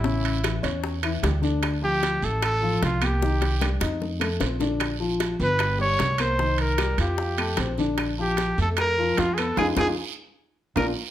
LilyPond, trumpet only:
\new Staff \with { instrumentName = "Trumpet" } { \time 4/4 \key bes \major \tempo 4 = 151 e'4. r2 r8 | r8 g'4 a'8 a'4 f'8 g'8~ | g'4. r2 r8 | r4. ces''4 des''4 c''8~ |
c''8 bes'4 g'2 r8 | r8 g'4 a'8 bes'4 f'16. aes'32 a'8 | aes'8 aes'8 r2 bes'8 r8 | }